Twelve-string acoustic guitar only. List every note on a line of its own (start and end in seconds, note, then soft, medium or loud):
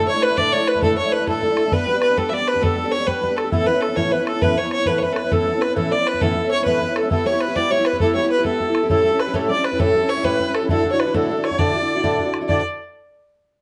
0.08 0.15 D3 medium
0.08 0.15 A3 medium
0.08 0.14 D4 medium
0.08 0.13 E4 medium
0.14 0.31 A3 soft
0.14 0.30 D4 soft
0.14 0.29 E4 medium
0.30 0.37 A3 soft
0.30 0.37 D4 soft
0.30 0.37 E4 soft
0.37 0.52 A2 medium
0.37 0.51 D3 medium
0.37 0.52 A3 medium
0.37 0.53 D4 medium
0.37 0.53 E4 medium
0.52 0.60 D3 medium
0.52 0.60 A3 medium
0.52 0.60 D4 medium
0.52 0.58 E4 medium
0.59 0.75 A3 soft
0.59 0.74 D4 soft
0.59 0.73 E4 medium
0.74 0.81 A3 soft
0.74 0.82 D4 soft
0.74 0.82 E4 soft
0.82 0.97 A2 medium
0.82 0.95 D3 medium
0.82 0.96 A3 medium
0.82 0.97 D4 medium
0.82 0.97 E4 medium
0.96 1.04 D3 medium
0.96 1.05 A3 soft
0.96 1.04 D4 medium
0.96 1.02 E4 medium
1.04 1.20 A3 soft
1.04 1.19 D4 medium
1.04 1.18 E4 medium
1.19 1.27 A3 soft
1.19 1.27 D4 medium
1.19 1.27 E4 medium
1.27 1.42 A2 medium
1.27 1.41 D3 medium
1.27 1.42 A3 medium
1.27 1.43 D4 medium
1.27 1.43 E4 medium
1.42 1.50 D3 soft
1.42 1.50 A3 medium
1.42 1.50 D4 medium
1.42 1.49 E4 medium
1.50 1.66 A3 soft
1.50 1.65 D4 soft
1.50 1.64 E4 medium
1.65 1.73 A3 soft
1.65 1.72 D4 soft
1.65 1.72 E4 medium
1.73 1.85 G3 medium
1.73 1.87 B3 medium
1.73 1.88 D4 medium
1.73 1.88 G4 medium
1.87 1.94 G3 medium
1.87 1.95 B3 medium
1.87 1.94 D4 medium
1.87 1.93 G4 medium
1.95 2.10 B3 soft
1.95 2.09 D4 soft
1.95 2.08 G4 medium
2.09 2.16 B3 soft
2.09 2.17 D4 soft
2.09 2.17 G4 medium
2.16 2.30 G3 medium
2.16 2.31 B3 medium
2.16 2.32 D4 medium
2.16 2.33 G4 medium
2.32 2.39 G3 medium
2.32 2.40 B3 medium
2.32 2.38 D4 medium
2.32 2.37 G4 medium
2.38 2.55 B3 soft
2.38 2.53 D4 soft
2.38 2.52 G4 soft
2.53 2.60 B3 soft
2.53 2.61 D4 soft
2.53 2.61 G4 soft
2.61 2.75 G3 medium
2.61 2.76 B3 medium
2.61 2.77 D4 medium
2.61 2.77 G4 medium
2.76 2.84 G3 medium
2.76 2.84 B3 medium
2.76 2.84 D4 medium
2.76 2.83 G4 medium
2.84 2.99 B3 soft
2.84 2.98 D4 medium
2.84 2.97 G4 medium
2.98 3.06 B3 soft
2.98 3.06 D4 medium
2.98 3.06 G4 medium
3.06 3.20 G3 medium
3.06 3.21 B3 medium
3.06 3.22 D4 medium
3.06 3.23 G4 medium
3.22 3.29 G3 medium
3.22 3.30 B3 medium
3.22 3.29 D4 medium
3.22 3.27 G4 medium
3.29 3.45 B3 soft
3.29 3.44 D4 soft
3.29 3.43 G4 medium
3.44 3.51 B3 soft
3.44 3.52 D4 soft
3.44 3.52 G4 medium
3.52 3.67 A2 medium
3.52 3.64 E3 medium
3.52 3.66 B3 medium
3.52 3.66 C#4 medium
3.52 3.67 E4 medium
3.66 3.74 E3 medium
3.66 3.74 B3 medium
3.66 3.74 C#4 medium
3.66 3.72 E4 medium
3.74 3.89 B3 soft
3.74 3.88 C#4 soft
3.74 3.87 E4 soft
3.88 3.96 B3 soft
3.88 3.96 C#4 soft
3.88 3.96 E4 soft
3.97 4.12 A2 medium
3.97 4.09 E3 medium
3.97 4.11 B3 medium
3.97 4.11 C#4 medium
3.97 4.12 E4 medium
4.11 4.19 E3 medium
4.11 4.19 B3 medium
4.11 4.19 C#4 medium
4.11 4.18 E4 medium
4.19 4.35 B3 soft
4.19 4.34 C#4 soft
4.19 4.32 E4 medium
4.33 4.41 B3 soft
4.33 4.42 C#4 soft
4.33 4.41 E4 soft
4.42 4.57 A2 medium
4.42 4.56 E3 medium
4.42 4.57 B3 medium
4.42 4.57 C#4 medium
4.42 4.58 E4 medium
4.57 4.64 E3 medium
4.57 4.65 B3 medium
4.57 4.64 C#4 medium
4.57 4.63 E4 medium
4.64 4.80 B3 soft
4.64 4.79 C#4 soft
4.64 4.78 E4 medium
4.79 4.87 B3 soft
4.79 4.87 C#4 medium
4.79 4.86 E4 medium
4.87 5.02 A2 medium
4.87 5.01 E3 medium
4.87 5.02 B3 medium
4.87 5.02 C#4 medium
4.87 5.03 E4 medium
5.02 5.09 E3 soft
5.02 5.10 B3 medium
5.02 5.10 C#4 medium
5.02 5.09 E4 medium
5.10 5.25 B3 soft
5.10 5.24 C#4 soft
5.10 5.23 E4 soft
5.24 5.31 B3 soft
5.24 5.31 C#4 soft
5.24 5.31 E4 medium
5.31 5.46 A2 medium
5.31 5.45 E3 medium
5.31 5.46 B3 medium
5.31 5.47 C#4 medium
5.31 5.47 E4 medium
5.46 5.54 E3 medium
5.46 5.54 B3 medium
5.46 5.54 C#4 medium
5.46 5.53 E4 medium
5.54 5.69 B3 soft
5.54 5.68 C#4 soft
5.54 5.67 E4 soft
5.68 5.76 B3 soft
5.68 5.76 C#4 soft
5.68 5.76 E4 soft
5.76 5.91 A2 medium
5.76 5.89 E3 medium
5.76 5.91 B3 medium
5.76 5.91 C#4 medium
5.76 5.92 E4 medium
5.90 5.98 E3 medium
5.90 5.99 B3 medium
5.90 5.98 C#4 medium
5.90 5.97 E4 medium
5.98 6.14 B3 soft
5.98 6.13 C#4 soft
5.98 6.12 E4 medium
6.13 6.21 B3 soft
6.13 6.21 C#4 soft
6.13 6.21 E4 soft
6.21 6.36 A2 medium
6.21 6.35 E3 medium
6.21 6.36 B3 medium
6.21 6.37 C#4 medium
6.21 6.37 E4 medium
6.36 6.44 E3 medium
6.36 6.44 B3 medium
6.36 6.45 C#4 medium
6.36 6.43 E4 medium
6.44 6.60 B3 soft
6.44 6.60 C#4 soft
6.44 6.58 E4 medium
6.60 6.66 B3 soft
6.60 6.67 C#4 medium
6.60 6.67 E4 soft
6.66 6.81 A2 medium
6.66 6.79 E3 medium
6.66 6.80 B3 medium
6.66 6.81 C#4 medium
6.66 6.82 E4 medium
6.81 6.88 E3 medium
6.81 6.89 B3 medium
6.81 6.89 C#4 medium
6.81 6.88 E4 medium
6.89 7.04 B3 soft
6.89 7.03 C#4 soft
6.89 7.02 E4 soft
7.03 7.10 B3 soft
7.03 7.11 C#4 soft
7.03 7.10 E4 medium
7.10 7.24 G3 medium
7.10 7.25 B3 medium
7.10 7.26 E4 medium
7.10 7.26 G4 medium
7.25 7.33 G3 medium
7.25 7.33 B3 medium
7.25 7.33 E4 medium
7.25 7.32 G4 medium
7.33 7.49 B3 soft
7.33 7.48 E4 soft
7.33 7.46 G4 medium
7.48 7.56 B3 soft
7.48 7.56 E4 soft
7.48 7.55 G4 medium
7.56 7.70 G3 medium
7.56 7.71 B3 medium
7.56 7.71 E4 medium
7.56 7.72 G4 medium
7.71 7.78 G3 medium
7.71 7.79 B3 medium
7.71 7.78 E4 medium
7.71 7.77 G4 medium
7.78 7.94 B3 soft
7.78 7.93 E4 medium
7.78 7.92 G4 medium
7.93 8.00 B3 soft
7.93 8.01 E4 soft
7.93 8.01 G4 soft
8.02 8.15 G3 medium
8.02 8.16 B3 medium
8.02 8.16 E4 medium
8.02 8.17 G4 medium
8.16 8.23 G3 soft
8.16 8.24 B3 medium
8.16 8.23 E4 medium
8.16 8.21 G4 medium
8.23 8.39 B3 soft
8.23 8.38 E4 soft
8.23 8.37 G4 medium
8.38 8.44 B3 soft
8.38 8.46 E4 soft
8.38 8.45 G4 medium
8.45 8.59 G3 medium
8.45 8.60 B3 medium
8.45 8.61 E4 medium
8.45 8.61 G4 medium
8.61 8.68 G3 medium
8.61 8.68 B3 medium
8.61 8.68 E4 medium
8.61 8.67 G4 medium
8.68 8.84 B3 soft
8.68 8.83 E4 soft
8.68 8.82 G4 soft
8.83 8.90 B3 soft
8.83 8.90 E4 medium
8.83 8.90 G4 medium
8.90 9.05 A2 medium
8.90 9.03 G3 medium
8.90 9.03 C#4 medium
8.90 9.05 E4 medium
8.90 9.05 G4 medium
9.04 9.12 G3 medium
9.04 9.12 C#4 medium
9.04 9.12 E4 medium
9.04 9.11 G4 medium
9.12 9.28 C#4 soft
9.12 9.27 E4 soft
9.12 9.26 G4 medium
9.27 9.33 C#4 soft
9.27 9.33 E4 soft
9.27 9.33 G4 medium
9.33 9.49 A2 medium
9.33 9.48 G3 medium
9.33 9.49 C#4 medium
9.33 9.49 E4 medium
9.33 9.50 G4 medium
9.49 9.57 G3 medium
9.49 9.57 C#4 medium
9.49 9.56 E4 medium
9.49 9.55 G4 medium
9.56 9.72 C#4 soft
9.56 9.71 E4 soft
9.56 9.70 G4 medium
9.71 9.79 C#4 soft
9.71 9.79 E4 soft
9.71 9.79 G4 soft
9.79 9.94 A2 medium
9.79 9.93 G3 medium
9.79 9.94 C#4 medium
9.79 9.95 E4 medium
9.79 9.95 G4 medium
9.94 10.02 G3 medium
9.94 10.02 C#4 medium
9.94 10.01 E4 medium
9.94 10.00 G4 medium
10.01 10.17 C#4 medium
10.01 10.16 E4 soft
10.01 10.15 G4 medium
10.16 10.23 C#4 soft
10.16 10.23 E4 medium
10.16 10.24 G4 medium
10.23 10.39 A2 medium
10.23 10.38 G3 medium
10.23 10.38 C#4 medium
10.23 10.39 E4 medium
10.23 10.40 G4 medium
10.39 10.47 G3 soft
10.39 10.47 C#4 medium
10.39 10.47 E4 medium
10.39 10.45 G4 medium
10.47 10.63 C#4 soft
10.47 10.62 E4 soft
10.47 10.60 G4 soft
10.61 10.70 C#4 soft
10.61 10.69 E4 soft
10.61 10.69 G4 soft
10.69 10.84 D2 medium
10.69 10.85 A2 medium
10.69 10.83 D3 medium
10.69 10.84 D4 medium
10.69 10.85 E4 medium
10.69 10.85 F#4 medium
10.85 10.92 D3 medium
10.85 10.92 D4 medium
10.85 10.91 E4 medium
10.85 10.91 F#4 medium
10.92 11.07 D3 soft
10.92 11.07 D4 soft
10.92 11.06 E4 soft
10.92 11.05 F#4 medium
11.06 11.14 D3 soft
11.06 11.14 D4 soft
11.06 11.14 E4 soft
11.06 11.14 F#4 medium
11.14 11.29 D2 medium
11.14 11.29 A2 medium
11.14 11.28 D3 medium
11.14 11.29 D4 medium
11.14 11.29 E4 medium
11.14 11.30 F#4 medium
11.29 11.36 D3 medium
11.29 11.37 D4 medium
11.29 11.36 E4 medium
11.29 11.35 F#4 medium
11.36 11.52 D3 soft
11.36 11.51 D4 soft
11.36 11.51 E4 soft
11.36 11.50 F#4 soft
11.51 11.58 D3 soft
11.51 11.58 D4 soft
11.51 11.58 E4 soft
11.51 11.59 F#4 soft
11.58 11.74 D2 medium
11.58 11.74 A2 medium
11.58 11.72 D3 medium
11.58 11.73 D4 medium
11.58 11.74 E4 medium
11.58 11.74 F#4 medium
11.73 11.81 D3 soft
11.73 11.81 D4 medium
11.73 11.81 E4 medium
11.73 11.80 F#4 soft
11.81 11.96 D3 soft
11.81 11.95 D4 soft
11.81 11.95 E4 soft
11.81 11.94 F#4 medium
11.95 12.02 D3 soft
11.95 12.03 D4 medium
11.95 12.03 E4 medium
11.95 12.03 F#4 medium
12.03 12.18 D2 medium
12.03 12.18 A2 medium
12.03 12.16 D3 medium
12.03 12.17 D4 medium
12.03 12.18 E4 medium
12.03 12.18 F#4 medium
12.17 12.25 D3 medium
12.17 12.26 D4 medium
12.17 12.24 E4 medium
12.17 12.24 F#4 medium
12.25 12.42 D3 soft
12.25 12.41 D4 soft
12.25 12.40 E4 soft
12.25 12.39 F#4 soft
12.41 12.48 D3 soft
12.41 12.48 D4 soft
12.41 12.49 E4 soft
12.41 12.48 F#4 medium
12.48 12.60 D2 medium
12.48 12.61 A2 medium
12.48 12.61 D3 medium
12.48 12.61 D4 medium
12.48 12.61 E4 medium
12.48 12.62 F#4 medium